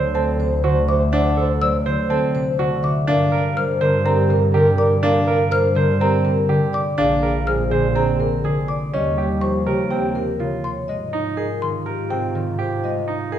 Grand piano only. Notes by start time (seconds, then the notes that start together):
Already playing: C5
0.15 C4
0.64 F#4
1.13 D4
1.37 A4
1.86 C5
2.10 C4
2.59 F#4
3.08 D4
3.32 A#4
3.81 C5
4.05 C4
4.54 G4
5.03 D4
5.27 A#4
5.76 C5
6.01 C4
6.49 G4
6.98 D4
7.23 A#4
7.71 C5
7.95 C4
8.45 G#4
8.94 C#4
9.18 G4
9.67 A#4
9.91 C4
10.40 F4
11.13 D#4
11.37 G#4
11.86 A#4
12.10 C4
12.59 G4
13.08 D#4
13.32 G#4